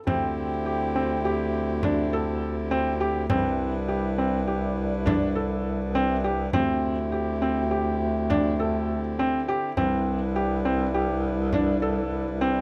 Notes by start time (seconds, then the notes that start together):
0.05 D2 D3 C4 E4 G4, frame drum
0.66 G4, frame drum
0.95 C4
1.25 G4
1.55 frame drum
1.83 D4, frame drum
2.13 A4
2.71 C4
3.00 G4
3.30 C2 C3 G3 C4 D4 E4 B4, frame drum
3.88 G4, frame drum
4.18 C4
4.47 G4
4.78 frame drum
5.06 D4, frame drum
5.35 A4
5.95 C4
6.24 G4
6.52 D2 D3 C4 G4, frame drum
7.12 G4, frame drum
7.42 C4
7.71 G4
8.01 frame drum
8.30 D4, frame drum
8.59 A4
9.19 C4
9.48 G4
9.76 C2 C3 G3 C4 D4 B4, frame drum
10.07 frame drum
10.36 G4
10.65 C4, frame drum
10.94 G4, frame drum
11.24 frame drum
11.53 D4, frame drum
11.82 A4, frame drum
12.11 frame drum
12.41 C4